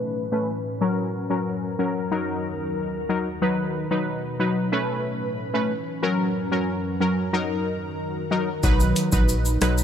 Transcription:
Already playing: A2 E3 A3 C#4 B4
0.32 A3 C#4 B4
0.81 F#2 F#3 C#4 A#4
1.30 F#3 C#4 A#4
1.79 F#3 C#4 A#4
2.11 D#2 D#3 F#3 D#4 F#4 A#4
3.09 F#3 D#4 A#4
3.42 B2 F#3 D#4 B4
3.90 F#3 D#4 B4
4.39 F#3 D#4 B4
4.72 A2 E3 A3 C#4 B4
5.53 A3 C#4 B4
6.02 F#2 F#3 C#4 A#4
6.51 F#3 C#4 A#4
7.00 F#3 C#4 A#4
7.33 D#2 D#3 F#3 D#4 F#4 A#4
8.31 F#3 D#4 A#4
8.63 B1 F#3 B3 D#4 B4, kick, maracas, shaker
8.80 shaker, maracas
8.96 closed hi-hat, maracas, shaker
9.12 A#1 F#3 D#4 B4, kick, shaker, maracas
9.29 maracas, shaker
9.45 maracas, shaker
9.61 B1 F#3 D#4 B4, cross-stick, closed hi-hat, maracas, shaker
9.78 maracas, shaker

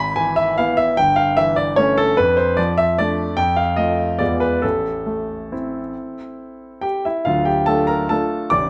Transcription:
Already playing: G#1 B5
0.16 E3 G#5
0.36 E5
0.58 B3 E4 F5
0.77 E5
0.97 G1 G5
1.16 F5
1.37 E3 E5
1.56 D5
1.76 A3 C#4 C#5
1.98 A4
2.17 F2 B4
2.37 C5
2.57 F3 D5
2.78 E5
2.98 A3 D4 D5
3.37 F2 G5
3.56 F5
3.76 A3 F4 D#5
4.19 E2 G#3 B3 F4 D5
4.40 B4
4.62 A1 A4
5.06 A3
5.52 C4 E4
6.81 G4 G5
7.05 E4 E5
7.25 D1 D2 F4 F5
7.45 G4 G5
7.66 A3 D4 F4 A4 A5
7.87 A#4 A#5
8.09 A3 D4 F4 A4 A5
8.50 A0 A1 D5 D6

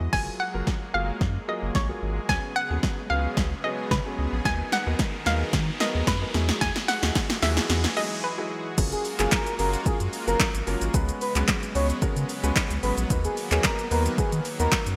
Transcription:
Already playing: E3 G#3 D#5
0.00 E2
0.13 F#1 F#3 G#3 A#3 F4 G#4 G#5, kick, snare, crash, riser
0.40 F#5
0.54 F#1 F#3 A#3 F4 A#4
0.67 kick, snare
0.94 F#1 F#3 A#3 F4 G#4 F5
1.21 F#2, kick, snare
1.48 F#3 A#3 F4 G#4 D#5
1.63 F#1
1.75 A#1 C#5, kick, snare
1.89 F#3 A#3 F4 G#4
2.02 G#1
2.29 C#2 C#3 F#3 B3 C#4 G#4 G#5, kick, snare
2.56 F#5
2.70 D#2 F#3 B3 C#4 G#4
2.83 kick, snare
3.10 C#2 F#3 B3 C#4 G#4 F5
3.37 C#2, kick, snare
3.64 F#3 B3 C#4 G#4 D#5
3.91 C#3 B4, kick, snare
4.06 F#3 B3 C#4 G#4
4.18 C#2
4.32 A#1
4.45 D#2 D#3 F#3 B3 D#4 A#4 G#5, kick, snare, closed hi-hat
4.72 F#5, snare, closed hi-hat
4.86 D#2 F#3 B3 D#4 A#4
4.99 kick, snare, closed hi-hat
5.26 D#2 F#3 B3 D#4 A#4 F5, snare, closed hi-hat
5.53 D#3, kick, snare, closed hi-hat
5.80 F#3 B3 D#4 A#4 D#5, snare, closed hi-hat
5.95 D#2
6.07 F#2 B4, kick, snare, closed hi-hat
6.22 F#3 B3 D#4 A#4
6.34 E2 E3 F#3 G#3 D#4 E4 F#4 G#4, snare, closed hi-hat
6.49 snare
6.61 E2 G#5, kick, snare, closed hi-hat
6.76 snare
6.88 F#5, snare, open hi-hat
7.03 D#2 F#3 D#4 E4 G#4, snare
7.15 kick, snare, closed hi-hat
7.30 snare
7.42 D#2 F#3 E4 F#4 G#4 E5, snare, open hi-hat
7.57 snare
7.69 E2, snare, closed hi-hat
7.84 snare
7.96 F#3 D#4 E4 G#4 D#5, open hi-hat
8.24 B4
8.38 F#3 D#4 E4 G#4
8.77 F#1 F#3 G#3 A#3 C#4 F4 F#4 G#4, kick, closed hi-hat, crash, shaker
8.92 G#4, closed hi-hat, shaker
9.05 open hi-hat, shaker
9.19 F#1 F#3 A#3 C#4 F4 G#4, clap, closed hi-hat, shaker
9.32 A#4, kick, snare, clap, closed hi-hat, shaker
9.47 closed hi-hat, shaker
9.59 F#1 F#3 A#3 C#4 F4 G#4 A#4, open hi-hat, shaker
9.73 closed hi-hat, shaker
9.86 F#2 F#3 A#3 C#4 F4 G#4, kick, closed hi-hat, shaker
10.00 F#2, closed hi-hat, shaker
10.13 open hi-hat, shaker
10.27 F#1 F#3 A#3 C#4 F4 A#4, closed hi-hat, shaker
10.40 kick, snare, clap, closed hi-hat, shaker
10.54 G#1, closed hi-hat, shaker
10.67 F#1 F#3 A#3 C#4 F4 A#4, open hi-hat, shaker
10.81 G#1, closed hi-hat, shaker
10.94 C#2 C#3 F#3 G#3 B3 C#4 F#4 B4, kick, closed hi-hat, shaker
11.09 closed hi-hat, shaker
11.21 B4, open hi-hat, shaker
11.35 C#2 G#3 B3 C#4 F#4 B4, clap, closed hi-hat, shaker
11.48 kick, snare, clap, closed hi-hat, shaker
11.63 closed hi-hat, shaker
11.75 C#2 G#3 B3 C#4 F#4 B4 C#5, open hi-hat, shaker
11.90 closed hi-hat, shaker
12.02 C#3 G#3 B3 C#4 F#4 A#4, kick, closed hi-hat, shaker
12.16 C#3, closed hi-hat, shaker
12.29 open hi-hat, shaker
12.43 C#2 G#3 B3 C#4 F#4 B4, closed hi-hat, shaker
12.56 kick, snare, clap, closed hi-hat, shaker
12.70 C#2, closed hi-hat, shaker
12.83 G#1 G#3 B3 C#4 F#4 G#4 B4, open hi-hat, shaker
12.97 A#1, closed hi-hat, shaker
13.10 D#2 D#3 A#3 B3 D#4 F#4 B4, kick, closed hi-hat, shaker
13.25 G#4, closed hi-hat, shaker
13.37 open hi-hat, shaker
13.51 D#2 A#3 B3 D#4 F#4 G#4 C#5, clap, closed hi-hat, shaker
13.64 A#4, kick, snare, clap, closed hi-hat, shaker
13.79 closed hi-hat, shaker
13.91 D#2 A#3 B3 D#4 F#4 A#4 B4, open hi-hat, shaker
14.06 closed hi-hat, shaker
14.18 D#3 A#3 B3 D#4 F#4 G#4 B4, kick, closed hi-hat, shaker
14.32 D#3, closed hi-hat, shaker
14.45 open hi-hat, shaker
14.60 D#2 A#3 B3 D#4 F#4 A#4 B4, closed hi-hat, shaker
14.72 kick, snare, clap, closed hi-hat, shaker
14.86 F#2, closed hi-hat, shaker

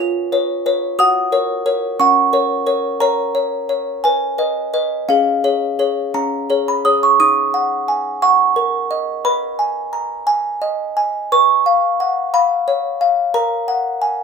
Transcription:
Already playing: G#5 F6
0.00 F4
0.32 B4 C#5
0.66 B4 C#5
0.99 F#4 F#5 D#6
1.32 A#4 C#5
1.66 A#4 C#5
2.00 C#4 F#5 C#6
2.33 A#4 C#5
2.66 A#4 C#5
3.00 A#4 C#5 A#5
3.35 C#5
3.69 C#5
4.04 B4 G#5
4.38 B4 D#5
4.74 B4 D#5
5.09 C#4 G#4 F5
5.44 G#4 C#5
5.79 G#4 C#5
6.14 C#4 A#5
6.50 G#4 C#5
6.68 B5
6.85 G#4 C#5 D#6
7.03 C#6
7.20 D#4 D#6
7.54 F#5
7.88 G#5
8.22 F#5 C#6
8.56 A#4
8.91 D#5
9.25 B4 B5
9.59 G#5
9.93 A#5
10.27 G#5
10.62 D#5
10.97 G#5
11.32 B4 C#6
11.66 F5
12.00 F#5
12.34 F5 B5
12.68 C#5
13.01 F5
13.34 A#4 A#5
13.68 F#5
14.02 G#5

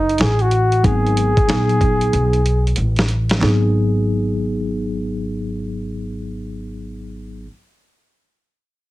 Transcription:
Already playing: F#1 D#4
0.09 closed hi-hat
0.18 A1 G#4, snare, closed hi-hat
0.39 F#4, closed hi-hat
0.51 closed hi-hat
0.72 closed hi-hat
0.83 G#1 F#3 B3 D#4 G#4, kick, closed hi-hat
1.07 closed hi-hat
1.17 closed hi-hat
1.37 kick, closed hi-hat
1.48 A#1 F#3 B3 D#4 G#4, snare, closed hi-hat
1.69 closed hi-hat
1.81 kick, closed hi-hat
2.01 closed hi-hat
2.13 B1, closed hi-hat
2.33 closed hi-hat
2.46 closed hi-hat
2.67 closed hi-hat
2.76 A1, closed hi-hat
2.96 snare, closed hi-hat
3.08 closed hi-hat
3.29 snare, closed hi-hat
3.39 G#1 F#3 B3 D#4, snare, clap
3.43 G#4

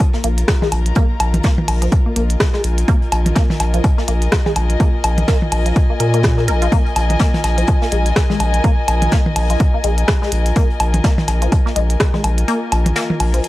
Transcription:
Already playing: F4 A#4 C#5 D#6
0.00 kick, closed hi-hat, low woodblock
0.08 A#5
0.13 A#3, snare
0.24 A#1 A#3, closed hi-hat
0.38 closed hi-hat
0.48 kick, cross-stick, snare, closed hi-hat
0.62 G#3, snare, mid tom
0.72 A#1, closed hi-hat, low woodblock
0.85 D#5, closed hi-hat
0.95 A#3, kick, closed hi-hat
1.20 A#1, closed hi-hat, low woodblock
1.34 closed hi-hat, mid tom
1.43 A#3, kick, snare, closed hi-hat
1.58 mid tom
1.68 A#1, closed hi-hat, open hi-hat, low woodblock
1.82 F3, closed hi-hat
1.92 kick, closed hi-hat
2.06 A#3
2.16 A#1 A#3, closed hi-hat
2.30 closed hi-hat
2.36 G#5
2.40 kick, cross-stick, snare, closed hi-hat
2.53 G#3, snare
2.64 A#1, closed hi-hat
2.78 closed hi-hat
2.88 A#3, kick, closed hi-hat
3.02 closed hi-hat
3.12 A#1, closed hi-hat, low woodblock
3.26 closed hi-hat, mid tom
3.35 A#3, kick, snare, closed hi-hat
3.50 snare, mid tom
3.60 A#1, snare, closed hi-hat, low woodblock
3.74 F3, closed hi-hat
3.84 kick, closed hi-hat, low woodblock
3.98 A#3, snare
4.08 A#1 A#3, closed hi-hat
4.22 closed hi-hat
4.32 kick, cross-stick, snare, closed hi-hat
4.46 G#3, snare, mid tom
4.56 A#1, closed hi-hat, low woodblock
4.70 closed hi-hat
4.80 A#3, kick, closed hi-hat
5.04 A#1, closed hi-hat, low woodblock
5.18 closed hi-hat, mid tom
5.28 A#3, kick, snare, closed hi-hat
5.42 mid tom
5.52 A#1, closed hi-hat, open hi-hat, low woodblock
5.66 F3, closed hi-hat
5.76 kick, closed hi-hat
5.90 A#3
6.00 A#2 A#4, closed hi-hat
6.14 A#3, closed hi-hat
6.23 kick, cross-stick, snare, closed hi-hat
6.38 A#3, snare
6.48 A#1 A#4, closed hi-hat
6.62 F3, closed hi-hat
6.72 A#3, kick, closed hi-hat
6.86 closed hi-hat
6.96 A#1, closed hi-hat, low woodblock
7.10 closed hi-hat, mid tom
7.19 A#3, kick, snare, closed hi-hat
7.34 snare, mid tom
7.44 A#1, snare, closed hi-hat, low woodblock
7.58 F3, closed hi-hat
7.67 kick, closed hi-hat, low woodblock
7.82 A#3, snare
7.91 A#1 G#3, closed hi-hat
8.06 closed hi-hat
8.16 kick, cross-stick, snare, closed hi-hat
8.30 G#3, snare, mid tom
8.40 A#1, closed hi-hat, low woodblock
8.54 closed hi-hat
8.64 A#3, kick, closed hi-hat
8.88 A#1, closed hi-hat, low woodblock
9.02 closed hi-hat, mid tom
9.11 A#3, kick, snare, closed hi-hat
9.26 mid tom
9.36 A#1, closed hi-hat, open hi-hat, low woodblock
9.50 F3, closed hi-hat
9.60 kick, closed hi-hat
9.74 A#3
9.84 A#1 G#3, closed hi-hat
9.98 closed hi-hat
10.08 kick, cross-stick, snare, closed hi-hat
10.22 G#3, snare
10.32 A#1, closed hi-hat
10.46 closed hi-hat
10.56 A#3, kick, closed hi-hat
10.70 closed hi-hat
10.80 A#1, closed hi-hat, low woodblock
10.94 closed hi-hat, mid tom
11.04 A#3, kick, snare, closed hi-hat
11.18 snare, mid tom
11.27 A#1, snare, closed hi-hat, low woodblock
11.42 F3, closed hi-hat
11.52 kick, closed hi-hat, low woodblock
11.66 A#3, snare
11.76 A#1 G#3, closed hi-hat
11.90 closed hi-hat
12.00 kick, cross-stick, snare, closed hi-hat
12.14 G#3, snare, mid tom
12.24 A#1, closed hi-hat, low woodblock
12.38 closed hi-hat
12.48 A#3, closed hi-hat
12.72 A#1, closed hi-hat, low woodblock
12.86 closed hi-hat, mid tom
12.96 A#3, snare, closed hi-hat
13.10 mid tom
13.20 A#1, closed hi-hat, open hi-hat, low woodblock
13.34 F3, closed hi-hat
13.44 closed hi-hat

